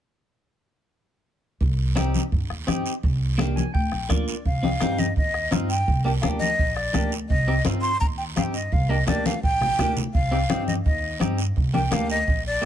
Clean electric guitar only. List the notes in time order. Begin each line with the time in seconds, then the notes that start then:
1.96 C4 D#4 G4
2.67 C4 D#4 G4
3.38 A#3 D4 G4
3.56 G#5
3.74 G5
4.09 A#3 D4 F4 D5
4.63 C4 D#4 G4
4.81 C4 D#4 G4
5.51 C4 D#4 F4
6.05 A#3 D4 G4
6.22 A#3 D4 G4
6.94 A#3 D4 G4
7.48 C4 D#4 G4
7.65 C4 D#4 F4
8.37 C4 D#4 G4
8.89 A#3 D4 G4
9.06 A#3 D4 G4
9.79 A#3 D4 G4
10.31 C4 D#4 G4
10.50 C4 D#4 G4
11.20 C4 D#4 G4
11.74 A#3 D4 G4
11.91 A#3 D4 G4
12.61 A#3